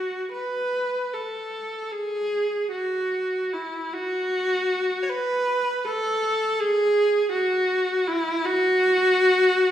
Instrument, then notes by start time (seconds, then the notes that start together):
viola
Already playing: F#4
0.32 B4
1.13 A4
1.92 G#4
2.71 F#4
3.53 E4
3.93 F#4
5.03 C#5
5.09 B4
5.85 A4
6.60 G#4
7.32 F#4
8.07 E4
8.45 F#4